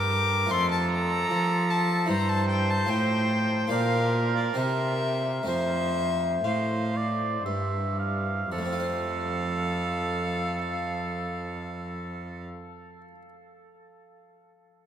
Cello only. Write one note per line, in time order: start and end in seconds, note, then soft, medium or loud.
0.00 0.51 G2 medium
0.51 1.29 F2 medium
1.30 2.11 F3 medium
2.09 2.89 G2 medium
2.89 3.70 A2 medium
3.72 4.55 A#2 medium
4.57 5.46 C3 medium
5.47 6.42 F2 medium
6.44 7.43 A2 medium
7.44 8.49 G2 medium
8.51 12.44 F2 medium